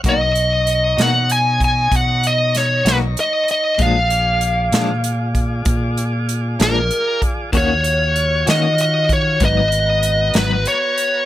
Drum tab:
HH |xxxxxxxxxxxx|xxxxxxxxxxxx|xxxxxxxxxxxx|
SD |---o----oo--|---o-----o--|---o-----o--|
BD |o----oo-----|o----oo----o|o----oo-----|